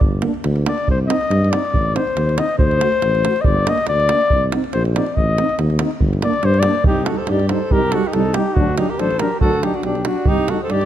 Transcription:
0.01 G1, davul low
0.22 A#3 D4, davul high
0.34 davul high
0.44 D2, davul high
0.56 davul high
0.65 A#3 D4 D5, davul high
0.78 davul high
0.88 C2 C5, davul low
1.07 C4 D#4 D#5, davul high
1.21 davul high
1.30 G2, davul high
1.44 davul high
1.51 C4 D#4 D5, davul high
1.65 davul high
1.73 A1, davul low
1.94 C4 D#4 C5, davul high
2.07 davul high
2.16 D#2, davul high
2.29 davul high
2.38 C4 D#4 D#5, davul high
2.49 davul high
2.58 D2 C5, davul low
2.71 davul high
2.81 A3 F#4, davul high
2.92 davul high
3.02 A1, davul high
3.15 davul high
3.25 A3 F#4, davul high
3.36 davul high
3.41 D5 D#5, davul low
3.46 G1
3.67 A#3 D4 D#5, davul high
3.78 davul high
3.87 D2 D5, davul high
4.00 davul high
4.09 A#3 D4, davul high
4.21 davul high
4.30 C2, davul low
4.52 C4 D#4, davul high
4.64 davul high
4.73 A#1 C5, davul high
4.85 davul high
4.96 C4 D#4 D5, davul high
5.06 davul high
5.16 A1 D#5, davul low
5.38 C4 D#4, davul high
5.49 davul high
5.58 D#2, davul high
5.70 davul high
5.79 C4 D#4, davul high
5.91 davul high
6.01 G1, davul low
6.13 davul high
6.22 A#3 D4 D5, davul high
6.33 davul high
6.43 G2 C5, davul high
6.54 davul high
6.60 D5, davul high
6.66 A#3 D4
6.75 davul high
6.84 C2 G3 D#4 G4, davul low
7.05 G3 D#4 F#4 A4, davul high
7.17 A4 C5
7.27 G2 G3 G4 D5, davul high
7.31 D#4
7.39 davul high
7.49 G3 D#4 A4 C5, davul high
7.71 C2 G3 D#4 G4 A#4, davul low
7.92 G3 D#4 F#4 A4, davul high
8.05 D#4 G4
8.13 C2 G3 D#4 A4, davul high
8.34 G3 D#4 G4, davul high
8.54 D2 F#3 D4 F#4, davul low
8.77 F#3 D4 D#4 G4, davul high
8.90 G4 A#4
8.99 A1 F#3 D4 A4 C5, davul high
9.11 davul high
9.19 F#3 D4 G4 A#4, davul high
9.40 D2 F#3 D4 F#4 A4, davul low
9.53 davul high
9.62 F#3 D4 D#4 G4, davul high
9.74 D4 F#4, davul high
9.82 B1 F#3 D4 G4, davul high
9.87 D4
9.95 davul high
10.05 F#3 D4 F#4, davul high
10.25 C2 G3 D#4 G4, davul low
10.30 D#4
10.48 G3 D#4 F#4 A4, davul high
10.62 A4 C5
10.68 G2 G3 D5, davul high
10.73 D#4 G4
10.81 davul high

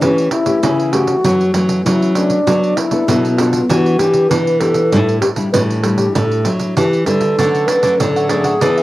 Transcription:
0.01 E3 A3 C#4 G4, pandeiro
0.18 pandeiro
0.31 E4, pandeiro
0.46 A3 C#4 G4, pandeiro
0.63 C#3 E3 A3 C#4 G4, pandeiro
0.80 pandeiro
0.92 A3 C#4 F#4 G4, pandeiro
1.07 pandeiro
1.24 F#2 E3 F#3 A3 C#4, pandeiro
1.41 pandeiro
1.54 E3 F#3 A3 C#4, pandeiro
1.69 pandeiro
1.85 C#3 F#3 E4, pandeiro
2.02 pandeiro
2.15 E3 A3 C#4 D4, pandeiro
2.30 pandeiro
2.47 F#3 B3 D4 A4, pandeiro
2.64 pandeiro
2.76 E4, pandeiro
2.91 B3 D4 A4, pandeiro
3.08 B2 F#3 B3 D4 A4, pandeiro
3.25 pandeiro
3.37 B3 D4 F4 A4, pandeiro
3.53 pandeiro
3.69 E3 B3 D4 F#4 G4, pandeiro
3.86 pandeiro
3.99 E3 B3 D4 G4, pandeiro
4.14 pandeiro
4.29 B2 E3 B4, pandeiro
4.47 pandeiro
4.60 B3 D4 G4 A4, pandeiro
4.74 pandeiro
4.92 A2 G3 D4 E4, pandeiro
5.09 pandeiro
5.20 G4, pandeiro
5.36 G3 D4 E4, pandeiro
5.53 A2 E3 G3 D4 E4 B4, pandeiro
5.70 pandeiro
5.82 G3 D4 E4 A4, pandeiro
5.96 G4, pandeiro
6.14 A2 A4, pandeiro
6.32 pandeiro
6.45 F#3 D4 E4, pandeiro
6.59 pandeiro
6.76 E3 G4, pandeiro
6.93 pandeiro
7.05 D3 G3 D4 E4 A4, pandeiro
7.21 pandeiro
7.38 D3 F#3 A3 C#4 D4 A4 C#5 F#5, pandeiro
7.54 pandeiro
7.67 D4 A4 B4 C#5 F#5, pandeiro
7.83 F#3 A3 C#4 D4 A4 C#5 F#5, pandeiro
7.99 A2 D3 A4, pandeiro
8.16 A4 C#5 F#5, pandeiro
8.28 F#3 A3 C#4 D4 G#4 A4 C#5 F#5, pandeiro
8.44 A4 C#5 F#5, pandeiro
8.61 E3 B3 D4 G#4 B4 E5, pandeiro
8.78 G#4 B4 E5, pandeiro

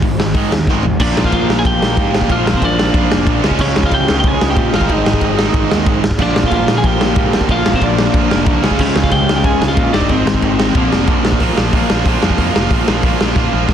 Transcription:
0.02 G#1 G#2 D#3, kick, open hi-hat
0.18 G#1 G#2 D#3, snare
0.34 G#2 D#3 G#3, kick, open hi-hat
0.51 D#2 G#2 D#3, snare
0.67 G#1 G#2 D#3 G#3, kick, snare
0.83 A1 G#2 D#3, floor tom
1.00 A#1 A#2 F3 A#3 D4 F4 D5, kick, crash
1.17 A#1, snare
1.24 F4 F5, kick
1.32 A#1 F4 F5, kick, ride
1.49 A#1, snare
1.59 G#4 G#5
1.64 A#1 A#2 F3 A#3 D4 F4 G4 G5, kick, ride
1.79 A#1 A#2 F3 A#3, snare
1.96 G#2 A#2 F3 A#3, kick, ride
2.14 A#1, snare
2.21 kick
2.28 A#1 A#2 F3 A#3 D4 F4 F5, kick, ride
2.33 F4
2.46 A#1, snare
2.54 C4 C5, kick
2.62 A#1 D4 D5, kick, ride
2.79 snare
2.94 A#1 A#2 F3 A#3 D4 F4, kick, ride
3.10 F1 A#2 F3 A#3, snare
3.26 A#1 A#2 F3 A#3, kick, ride
3.42 C#2 C#3 F3 G#3 C#4, snare
3.46 F4
3.51 kick
3.59 C#2 C#4 C#5, kick, crash
3.76 C#2, snare
3.83 F4 F5, kick
3.91 C#2 G4 G5, kick, ride
4.08 C#2 F3 G#3 C#4 F4, snare
4.12 C#3
4.19 G4 G5
4.23 C#2 C#3 G#3 C#4 G#4, kick, ride
4.27 G#5
4.40 C#2 C#3 G#3 C#4, snare
4.50 G4 G5
4.56 A#2, kick, ride
4.73 G#1 G#2 D#3 G#3 C4 D#4 F4 F5, snare
4.81 kick
4.89 G#1 D#4 D#5, kick, ride
5.06 G#1, snare
5.13 kick
5.21 G#1, kick, ride
5.38 D#3 G#3 C4 D#4, snare
5.42 G#2
5.53 G#1 G#2 D#3 G#3, kick, ride
5.70 D#2 G#2 D#3 G#3, snare
5.86 G#1, kick, ride
6.03 G#1, snare
6.11 kick
6.18 A#1 A#2 D3 F3 A#3 D4 D5, kick, crash
6.23 F4
6.36 A#1, snare
6.43 F4, kick
6.48 F5, kick, ride
6.52 A#1 F4 F5
6.68 A#1, snare
6.77 G#4 G#5
6.84 A#1 A#2 D3 F3 A#3 G4 G5, kick, ride
6.88 F4
6.99 A#1 A#2 F3 A#3, snare
7.16 G#2 A#2 F3 A#3, kick, ride
7.33 A#1, snare
7.41 kick
7.48 A#1 A#2 D3 F3 A#3 F4 F5, kick, ride
7.53 F3 A#3 F4
7.66 A#1, snare
7.73 C4 C5, kick
7.81 A#1 D4 D5, kick, ride
7.99 snare
8.14 A#1 A#2 D3 F3, kick, ride
8.18 A#3 F4
8.30 F1 A#2 F3 A#3, snare
8.46 C2 A#2 F3 A#3, kick, ride
8.62 C#2 C#3 G#3 C#4, snare
8.67 F4
8.71 kick
8.79 C#2 C#4 C#5, kick, crash
8.96 C#2, snare
9.04 F4 F5, kick
9.11 C#2 G4 G5, kick, ride
9.28 C#2 C#3 G#3 C#4 F4, snare
9.36 G4 G5
9.43 C#2 C#3 G#3 C#4 G#4 G#5, kick, ride
9.61 C#2 C#3 G#3 C#4, snare
9.68 F4 F5
9.77 A#2, kick, ride
9.93 G#1 G#2 D#3 G#3 C4 D4 D5, snare
9.97 D#4
10.01 kick
10.09 G#1 C4 C5, kick, ride
10.26 G#1, snare
10.34 kick
10.42 G#1, kick, ride
10.59 G#2 D#3 G#3 C4 D#4, snare
10.75 A#1 A#2 D3 F3 A#3 D4, kick, ride
10.92 F1, snare
11.07 A#1, kick, ride
11.25 A#1, snare
11.32 kick
11.40 A#1 A#2 F3 A#3 D4 F4, kick, open hi-hat
11.57 A#1 A#2 F3 A#3 D4 F4, snare
11.73 A#1 A#2 F3 A#3 D4 F4, kick, open hi-hat
11.90 A#1 A#2 F3 A#3 D4 F4, snare
12.05 A#1 A#2 F3 A#3, kick, open hi-hat
12.10 D4 F4
12.23 F2 A#2 F3 A#3 D4 F4, snare
12.30 kick
12.38 F2 A#2 F3 A#3 D4 F4, kick, open hi-hat
12.55 F1 A#2 F3 A#3 D4 F4, snare
12.70 A#1 A#2 F3 A#3 D4 F4, kick, open hi-hat
12.87 A#1 A#2 F3 A#3 D4 F4, snare
13.03 A#1 A#2 F3 A#3 D4 F4, kick, open hi-hat
13.21 A#1 A#2 F3 A#3 D4 F4, snare
13.36 A#1 A#2 F3 A#3 D4 F4, kick, snare
13.54 A#1 A#2 F3 A#3 D4 F4
13.69 A#1 A#2 F3, kick, snare

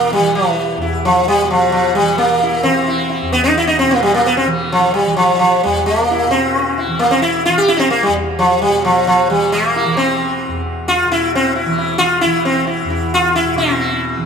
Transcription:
Already playing: E2 B2 E3 A#3
0.13 G3
0.18 E3
0.35 E3
0.78 E2 E4
1.05 F3
1.28 G3
1.41 B2
1.50 F3
1.72 F3
1.95 G3
2.00 E3
2.18 A#3
2.43 E4
2.62 E3 C4
2.88 E4
3.09 E4
3.22 E2
3.33 B3
3.44 D#4
3.57 E4
3.67 D#4
3.79 B2 C4
3.91 A#3
4.03 G3
4.14 A#3
4.26 B3
4.37 C4
4.46 E3
4.72 F3
4.94 G3
5.05 E3
5.17 F3
5.39 F3
5.63 E2 G3
5.86 A#3
6.11 E4
6.25 B2
6.31 C4
6.78 E4
6.87 E3
6.99 A#3
7.11 C4
7.22 E4
7.45 E3 F4
7.58 G4
7.68 E4
7.77 C4 D#4
7.90 A#3
8.03 G3
8.08 E2
8.39 F3
8.62 G3
8.68 B2
8.85 F3
9.07 F3
9.28 E3 G3
9.52 A#3
9.76 E4
9.85 E3
9.97 C4
10.48 E2
10.88 F4
11.05 B2
11.12 E4
11.35 C4
11.55 E4
11.66 E3
11.78 E4
11.98 F4
12.21 E3 E4
12.45 C4
12.67 E4
12.85 E2
12.90 E4
13.14 F4
13.36 E4
13.45 B2
13.55 B2 C4 E4
13.79 E4
14.17 E3

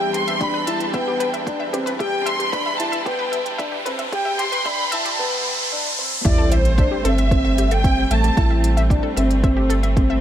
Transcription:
Already playing: E2 E3 G3 D4 G4 B4 G5, riser
0.01 E5
0.14 C6, closed hi-hat
0.28 E5, closed hi-hat
0.41 D4 G4 B5, kick, closed hi-hat
0.54 B4
0.67 E4 E5 A5, closed hi-hat
0.80 closed hi-hat
0.94 B3 E5 G5, kick, closed hi-hat
1.08 G4
1.20 B4, closed hi-hat
1.34 E5, closed hi-hat
1.47 D4, kick, closed hi-hat
1.60 E5
1.73 C4 G4, closed hi-hat
1.86 B4, closed hi-hat
1.99 G4 E5 G5, kick, closed hi-hat
2.26 E5 C6, closed hi-hat
2.40 G4, closed hi-hat
2.51 D4 B4 B5, kick, closed hi-hat
2.66 E5
2.78 E4 A5, closed hi-hat
2.92 E5, closed hi-hat
3.06 B3 G4 G5, kick, closed hi-hat
3.19 B4
3.32 E5, closed hi-hat
3.46 closed hi-hat
3.58 D4 E5, kick, closed hi-hat
3.72 G4
3.86 C4 B4, closed hi-hat
3.99 E5, closed hi-hat
4.12 G4 G5, kick, closed hi-hat
4.25 E5
4.39 G4 C6, closed hi-hat
4.52 B4, closed hi-hat
4.65 D4 E5 B5, kick, closed hi-hat
4.92 E4 E5 A5, closed hi-hat
5.05 G4, closed hi-hat
5.19 B3
5.72 D4
5.99 C4
6.25 A1 G3 A3 C4 E4 G4 D5, kick, closed hi-hat, sub drop
6.38 A4
6.52 C5 E5, closed hi-hat
6.65 closed hi-hat
6.78 D4 E5, kick, closed hi-hat
6.91 G4
7.05 G1 C4 A4 E5, closed hi-hat
7.18 E5, closed hi-hat
7.31 C4, kick, closed hi-hat
7.45 E5
7.58 G4, closed hi-hat
7.71 A4 G5, closed hi-hat
7.84 C4 E5, kick, closed hi-hat
8.11 A1 A3 E5 A5, closed hi-hat
8.24 G4, closed hi-hat
8.37 A1 E4 A4, kick, closed hi-hat
8.51 E5
8.64 closed hi-hat
8.77 E5, closed hi-hat
8.90 D4 G4, kick, closed hi-hat
9.03 A4
9.17 G1 C4 E5, closed hi-hat
9.31 closed hi-hat
9.43 C4 E5, kick, closed hi-hat
9.57 G4
9.70 A4, closed hi-hat
9.83 E5, closed hi-hat
9.97 C4, kick, closed hi-hat
10.10 E5

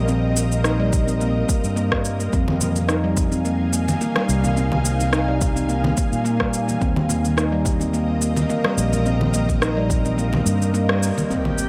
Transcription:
Already playing: A#1 C4 A#4 D#5
0.08 C4, cabasa
0.36 A#3, cabasa
0.52 cabasa
0.64 D#4, cross-stick, cabasa
0.80 G3
0.93 kick, cabasa
1.07 C4, cabasa
1.20 A#3, cabasa
1.49 A#3, kick, cabasa
1.64 G2, cabasa
1.76 A#3, cabasa
1.92 G3, kick, cross-stick
2.05 cabasa
2.20 A#3, cabasa
2.33 F2 C4 D#4 F5 G#5, kick, cabasa
2.48 muted conga, low conga
2.61 A#3, high conga, low conga, cabasa
2.76 muted conga, cabasa
2.89 D#4, cross-stick, cabasa
3.04 G3
3.17 kick, low conga, cabasa
3.32 C4, high conga, cabasa
3.45 A#3, cabasa
3.73 A#3, cabasa
3.88 muted conga, low conga, cabasa
4.00 A#3, high conga, cabasa
4.16 G3, cross-stick, muted conga
4.29 C2, cabasa
4.44 A#3, high conga, low conga, cabasa
4.57 C4, cabasa
4.72 muted conga, low conga
4.85 A#3, cabasa
5.00 muted conga, cabasa
5.13 D#4, cross-stick, cabasa
5.28 G3
5.41 kick, low conga, cabasa
5.56 C4, high conga, cabasa
5.69 A#3, cabasa
5.84 muted conga, low conga
5.97 A#3, kick, cabasa
6.13 A#2, high conga, cabasa
6.25 A#3, cabasa
6.40 G3, kick, cross-stick
6.53 cabasa
6.68 A#3, high conga, cabasa
6.81 D#2 C4 A#4 D#5, kick, cabasa
6.96 muted conga, low conga
7.09 A#3, high conga, low conga, cabasa
7.25 muted conga, cabasa
7.37 D#4, cross-stick, cabasa
7.52 G3
7.65 kick, low conga, cabasa
7.80 C4, high conga, cabasa
7.93 A#3, cabasa
8.21 A#3, cabasa
8.37 muted conga, low conga, cabasa
8.49 A#3, high conga, cabasa
8.64 G3, cross-stick, muted conga
8.78 A#1, cabasa
8.93 A#3, high conga, low conga, cabasa
9.06 C4, cabasa
9.21 muted conga, low conga
9.33 A#3, high conga, low conga, cabasa
9.49 kick, muted conga, cabasa
9.61 D#4, cross-stick, cabasa
9.77 G3
9.90 kick, low conga, cabasa
10.05 C4, high conga, cabasa
10.18 A#3, cabasa
10.33 muted conga, low conga
10.46 G2 A#3, cabasa
10.61 high conga, cabasa
10.74 A#3, cabasa
10.89 G3, cross-stick
11.03 cabasa
11.17 A#3, high conga, low conga, cabasa
11.30 C4 D#4 G4 D#5 F5 G5, impact, cabasa
11.45 low conga
11.58 A#3, cabasa

